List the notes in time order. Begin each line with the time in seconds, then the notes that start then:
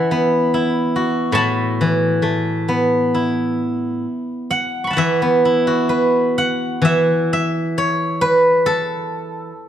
Already playing: E3 C#5 E5 F#5
0.11 B3
0.54 E4
0.96 F#4
1.32 A2 A5 C#6
1.37 B5
1.81 E3
2.22 A3
2.69 B3
3.14 E4
4.51 F#5
4.84 B5 C#6
4.90 F#5 A5
4.97 E3 E5
5.22 B3
5.45 E4
5.67 F#4
5.89 B4
6.38 F#5
6.82 E3 E5
7.33 E5
7.78 C#5
8.21 B4
8.66 A4